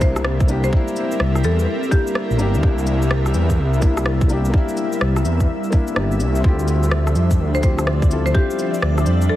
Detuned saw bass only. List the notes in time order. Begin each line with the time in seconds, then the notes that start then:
Already playing: C2
1.20 C2
1.44 E2
2.30 A#1
2.39 G1
2.54 E2
2.63 C2
3.10 C2
3.34 E2
3.58 C2
5.01 C2
5.25 E2
5.96 G1
6.20 C2
6.44 D2
6.92 D2
7.16 F2
7.39 D2
8.82 D2
9.07 F2